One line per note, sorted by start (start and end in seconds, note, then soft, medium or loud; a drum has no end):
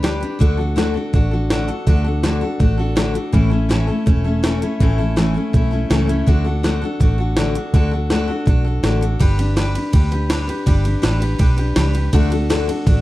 0.00 0.23 D2 medium
0.00 0.22 G3 medium
0.00 0.22 D4 medium
0.00 snare loud
0.00 closed hi-hat medium
0.04 0.21 G4 medium
0.04 0.19 B4 medium
0.20 0.39 D4 soft
0.20 0.41 G4 medium
0.20 0.40 B4 soft
0.20 closed hi-hat medium
0.39 0.96 D2 medium
0.39 0.58 D3 medium
0.39 0.59 A3 medium
0.39 0.59 D4 medium
0.39 0.58 F#4 medium
0.39 0.56 A4 loud
0.39 kick medium
0.39 closed hi-hat medium
0.57 0.76 D4 soft
0.57 0.76 F#4 medium
0.57 0.76 A4 medium
0.76 0.95 D3 medium
0.76 0.95 A3 medium
0.76 0.96 D4 medium
0.76 0.94 F#4 medium
0.76 0.92 A4 medium
0.76 snare medium
0.76 closed hi-hat medium
0.94 1.13 D4 medium
0.94 1.14 F#4 soft
0.94 1.13 A4 medium
1.13 1.69 A1 medium
1.13 1.32 A3 medium
1.13 1.32 D4 medium
1.13 1.32 F#4 medium
1.13 1.30 A4 medium
1.13 kick loud
1.13 closed hi-hat medium
1.31 1.50 D4 soft
1.31 1.51 F#4 medium
1.31 1.50 A4 medium
1.50 1.69 D3 medium
1.50 1.69 A3 medium
1.50 1.69 D4 medium
1.50 1.69 F#4 medium
1.50 1.67 A4 medium
1.50 snare loud
1.50 closed hi-hat medium
1.68 1.87 D4 soft
1.68 1.87 F#4 soft
1.68 1.87 A4 medium
1.68 closed hi-hat medium
1.87 2.43 D2 medium
1.87 2.05 D3 medium
1.87 2.06 A3 medium
1.87 2.06 D4 medium
1.87 2.05 F#4 medium
1.87 2.03 A4 medium
1.87 kick loud
1.87 closed hi-hat medium
2.04 2.23 D4 soft
2.04 2.23 F#4 soft
2.04 2.23 A4 medium
2.23 2.42 D3 medium
2.23 2.42 A3 medium
2.23 2.42 D4 medium
2.23 2.41 F#4 medium
2.23 2.40 A4 medium
2.23 snare loud
2.23 closed hi-hat medium
2.41 2.60 D4 soft
2.41 2.60 F#4 medium
2.41 2.60 A4 medium
2.59 3.16 A1 medium
2.59 2.78 A3 medium
2.59 2.79 D4 medium
2.59 2.78 F#4 medium
2.59 2.76 A4 medium
2.59 kick loud
2.59 closed hi-hat medium
2.77 2.96 D4 soft
2.77 2.96 F#4 soft
2.77 2.96 A4 medium
2.96 3.15 D3 medium
2.96 3.15 A3 medium
2.96 3.15 D4 medium
2.96 3.14 F#4 medium
2.96 3.12 A4 medium
2.96 snare loud
2.96 closed hi-hat medium
3.14 3.33 D4 soft
3.14 3.34 F#4 medium
3.14 3.33 A4 medium
3.14 closed hi-hat medium
3.32 3.89 A1 medium
3.32 3.52 A2 medium
3.32 3.52 E3 medium
3.32 3.52 A3 medium
3.32 3.51 C#4 medium
3.32 3.50 E4 medium
3.32 3.49 A4 medium
3.32 kick loud
3.32 closed hi-hat medium
3.50 3.69 A3 soft
3.50 3.69 C#4 soft
3.50 3.69 E4 medium
3.50 3.69 A4 medium
3.69 3.88 A2 medium
3.69 3.88 E3 medium
3.69 3.89 A3 medium
3.69 3.88 C#4 medium
3.69 3.87 E4 medium
3.69 3.86 A4 medium
3.69 snare medium
3.69 closed hi-hat medium
3.87 4.05 A3 soft
3.87 4.06 C#4 soft
3.87 4.07 E4 medium
3.87 4.06 A4 medium
4.06 4.63 E1 medium
4.06 4.25 A3 medium
4.06 4.25 C#4 medium
4.06 4.24 E4 medium
4.06 4.23 A4 medium
4.06 kick loud
4.06 closed hi-hat medium
4.24 4.43 A3 soft
4.24 4.43 C#4 soft
4.24 4.43 E4 soft
4.24 4.43 A4 medium
4.43 4.62 A2 medium
4.43 4.62 E3 medium
4.43 4.62 A3 medium
4.43 4.62 C#4 medium
4.43 4.62 E4 medium
4.43 4.61 A4 medium
4.43 snare loud
4.43 closed hi-hat medium
4.62 4.80 A3 soft
4.62 4.81 C#4 soft
4.62 4.81 E4 medium
4.62 4.80 A4 soft
4.62 closed hi-hat medium
4.80 5.36 A1 medium
4.80 4.99 A2 medium
4.80 4.99 E3 medium
4.80 4.99 A3 medium
4.80 4.99 C#4 medium
4.80 4.98 E4 medium
4.80 4.97 A4 medium
4.80 kick loud
4.80 closed hi-hat medium
4.98 5.16 A3 medium
4.98 5.17 C#4 soft
4.98 5.17 E4 medium
4.98 5.17 A4 medium
5.16 5.35 A2 medium
5.16 5.35 E3 medium
5.16 5.36 A3 medium
5.16 5.35 C#4 medium
5.16 5.34 E4 medium
5.16 5.33 A4 medium
5.16 snare medium
5.16 closed hi-hat medium
5.34 5.52 A3 medium
5.34 5.53 C#4 medium
5.34 5.54 E4 soft
5.34 5.53 A4 medium
5.53 5.85 B1 medium
5.53 5.72 A3 medium
5.53 5.72 C#4 medium
5.53 5.71 E4 medium
5.53 5.70 A4 medium
5.53 kick loud
5.53 closed hi-hat medium
5.71 5.90 A3 soft
5.71 5.90 C#4 soft
5.71 5.91 E4 medium
5.71 5.90 A4 medium
5.90 6.22 C#2 medium
5.90 6.09 A2 medium
5.90 6.09 E3 medium
5.90 6.09 A3 medium
5.90 6.09 C#4 medium
5.90 6.08 E4 medium
5.90 6.06 A4 loud
5.90 snare loud
5.90 closed hi-hat medium
6.07 6.26 A3 soft
6.07 6.27 C#4 soft
6.07 6.27 E4 medium
6.07 6.26 A4 medium
6.07 closed hi-hat medium
6.26 6.83 D2 medium
6.26 6.45 D3 medium
6.26 6.46 A3 medium
6.26 6.46 D4 medium
6.26 6.45 F#4 medium
6.26 6.43 A4 medium
6.26 kick medium
6.26 closed hi-hat soft
6.44 6.63 D4 soft
6.44 6.64 F#4 soft
6.44 6.63 A4 medium
6.63 6.82 D3 medium
6.63 6.82 A3 medium
6.63 6.83 D4 medium
6.63 6.82 F#4 medium
6.63 6.80 A4 medium
6.63 snare medium
6.63 closed hi-hat medium
6.82 7.00 D4 medium
6.82 7.01 F#4 medium
6.82 7.00 A4 medium
7.00 7.56 A1 medium
7.00 7.19 A3 medium
7.00 7.19 D4 medium
7.00 7.19 F#4 medium
7.00 7.17 A4 medium
7.00 kick loud
7.00 closed hi-hat medium
7.18 7.37 D4 soft
7.18 7.37 F#4 soft
7.18 7.37 A4 medium
7.37 7.55 D3 medium
7.37 7.56 A3 medium
7.37 7.56 D4 medium
7.37 7.55 F#4 medium
7.37 7.53 A4 medium
7.37 snare loud
7.37 closed hi-hat medium
7.55 7.73 D4 soft
7.55 7.74 F#4 soft
7.55 7.73 A4 soft
7.55 closed hi-hat medium
7.74 8.29 D2 medium
7.74 7.92 D3 medium
7.74 7.92 A3 medium
7.74 7.93 D4 medium
7.74 7.92 F#4 medium
7.74 7.90 A4 medium
7.74 kick loud
7.74 closed hi-hat medium
7.91 8.10 D4 soft
7.91 8.11 F#4 medium
7.91 8.10 A4 medium
8.10 8.29 D3 medium
8.10 8.29 A3 medium
8.10 8.29 D4 medium
8.10 8.28 F#4 medium
8.10 8.26 A4 medium
8.10 snare loud
8.10 closed hi-hat medium
8.28 8.46 D4 soft
8.28 8.47 F#4 medium
8.28 8.47 A4 medium
8.46 8.78 B1 medium
8.46 8.65 A3 medium
8.46 8.66 D4 medium
8.46 8.65 F#4 medium
8.46 8.63 A4 medium
8.46 kick loud
8.46 closed hi-hat medium
8.64 8.83 D4 soft
8.64 8.83 F#4 soft
8.64 8.83 A4 medium
8.83 9.15 A1 medium
8.83 9.02 D3 medium
8.83 9.02 A3 medium
8.83 9.03 D4 medium
8.83 9.01 F#4 medium
8.83 9.00 A4 medium
8.83 snare loud
8.83 closed hi-hat medium
9.01 9.19 D4 soft
9.01 9.21 F#4 soft
9.01 9.20 A4 medium
9.01 closed hi-hat medium
9.19 9.76 G1 medium
9.19 9.38 G3 medium
9.19 9.39 D4 medium
9.19 9.38 G4 loud
9.19 9.36 B4 loud
9.19 kick loud
9.19 ride medium
9.37 9.56 D4 medium
9.37 9.57 G4 medium
9.37 9.56 B4 medium
9.37 ride medium
9.56 9.75 G3 medium
9.56 9.76 D4 medium
9.56 9.75 G4 loud
9.56 9.73 B4 medium
9.56 snare medium
9.56 ride medium
9.75 9.93 D4 medium
9.75 9.94 G4 medium
9.75 9.93 B4 medium
9.75 ride medium
9.93 10.49 D2 medium
9.93 10.12 G3 medium
9.93 10.12 D4 medium
9.93 10.12 G4 medium
9.93 10.10 B4 medium
9.93 kick loud
9.93 ride medium
10.11 10.29 D4 soft
10.11 10.30 G4 medium
10.11 10.30 B4 medium
10.11 ride medium
10.29 10.48 G3 medium
10.29 10.49 D4 medium
10.29 10.48 G4 loud
10.29 10.46 B4 medium
10.29 snare loud
10.29 ride medium
10.47 10.66 D4 soft
10.47 10.66 G4 medium
10.47 10.67 B4 medium
10.47 ride medium
10.66 10.95 G1 medium
10.66 10.85 G3 medium
10.66 10.85 D4 medium
10.66 10.84 G4 medium
10.66 10.82 B4 loud
10.66 kick loud
10.66 ride medium
10.84 11.02 D4 soft
10.84 11.02 G4 medium
10.84 11.03 B4 medium
10.84 ride medium
11.02 11.35 A1 medium
11.02 11.21 G3 medium
11.02 11.22 D4 medium
11.02 11.21 G4 medium
11.02 11.19 B4 medium
11.02 snare loud
11.02 ride medium
11.20 11.39 D4 medium
11.20 11.39 G4 medium
11.20 11.39 B4 medium
11.20 ride medium
11.38 11.71 B1 medium
11.38 11.58 G3 medium
11.38 11.58 D4 medium
11.38 11.58 G4 medium
11.38 11.56 B4 medium
11.38 kick loud
11.38 ride medium
11.57 11.76 D4 soft
11.57 11.76 G4 soft
11.57 11.76 B4 medium
11.57 ride medium
11.76 12.08 C#2 medium
11.76 11.95 G3 medium
11.76 11.95 D4 medium
11.76 11.94 G4 medium
11.76 11.92 B4 medium
11.76 snare loud
11.76 ride medium
11.93 12.13 D4 soft
11.93 12.14 G4 medium
11.93 12.13 B4 medium
11.93 ride medium
12.13 12.69 D2 medium
12.13 12.32 D3 medium
12.13 12.32 A3 medium
12.13 12.32 D4 medium
12.13 12.31 F#4 medium
12.13 12.29 A4 loud
12.13 kick loud
12.13 ride medium
12.30 12.49 D4 soft
12.30 12.50 F#4 medium
12.30 12.49 A4 medium
12.30 ride medium
12.50 12.68 D3 medium
12.50 12.68 A3 medium
12.50 12.69 D4 medium
12.50 12.68 F#4 medium
12.50 12.66 A4 loud
12.50 snare loud
12.50 ride medium
12.67 12.86 D4 soft
12.67 12.87 F#4 medium
12.67 12.86 A4 medium
12.67 ride medium
12.86 13.01 A1 medium
12.86 13.01 A3 medium
12.86 13.01 D4 medium
12.86 13.01 F#4 medium
12.86 13.01 A4 medium
12.86 kick loud
12.86 ride medium